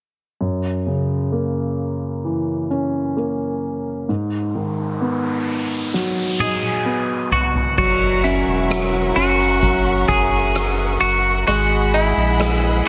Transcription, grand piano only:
0.41 4.05 F#2 soft
0.86 2.67 C#3 soft
1.32 3.13 A#3 soft
2.25 4.05 E3 soft
2.71 4.05 C#4 soft
3.17 4.06 A#3 soft
4.09 7.74 G#2 soft
4.55 6.36 D#3 soft
5.01 6.82 B3 soft
5.94 7.74 F#3 soft
6.40 7.74 D#4 soft
6.86 7.75 B3 soft
7.78 8.69 F#3 medium
8.24 9.15 C#4 soft
8.70 9.61 F#3 soft
9.16 10.97 C#4 medium
9.63 11.43 F#3 medium
11.48 12.38 G#3 medium
11.94 12.88 D#5 soft
12.40 12.88 G#3 soft

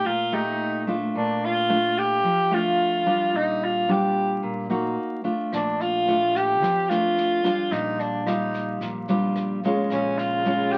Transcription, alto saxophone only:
0.06 0.36 F4 medium
0.34 0.88 D#4 medium
1.17 1.47 D4 medium
1.45 2.00 F4 medium
1.98 2.55 G4 loud
2.54 3.38 F4 medium
3.36 3.65 D#4 medium
3.64 3.93 F4 medium
3.91 4.44 G4 medium
5.54 5.83 D4 medium
5.81 6.38 F4 medium
6.36 6.91 G4 loud
6.89 7.74 F4 medium
7.72 8.01 D#4 medium
8.00 8.29 D4 medium
8.27 8.81 D#4 medium
9.92 10.20 C#4 medium
10.18 10.73 F4 medium
10.71 10.78 G4 loud

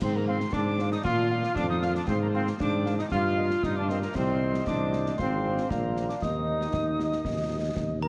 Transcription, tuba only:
0.03 0.45 G#2 medium
0.55 0.97 G#2 medium
1.06 1.49 A#2 loud
1.57 2.00 F2 medium
2.09 2.51 G#2 loud
2.60 3.03 G#2 medium
3.12 3.55 G2 loud
3.63 4.06 G2 medium
4.15 4.61 C2 medium
4.67 5.13 C2 medium
5.19 5.64 G#1 medium
5.71 6.09 A#1 medium
6.23 6.68 D#2 medium
6.74 7.19 D#2 medium
7.26 7.71 D#2 medium
7.77 8.08 D#2 medium

